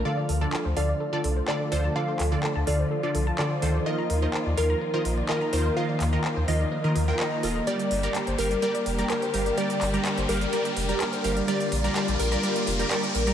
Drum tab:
HH |--o---o---o---o-|--o---o---o---o-|--o---o---o---o-|--o---o---o---o-|
CP |----x-------x---|--x-x-------x---|----x-------x---|--x-x-------x---|

HH |xxoxxxoxxxoxxxox|xxoxxxoxxxoxxxox|xxoxxxoxxxoxxxox|
CP |----x-------x---|--x-x-------x---|----x-------x---|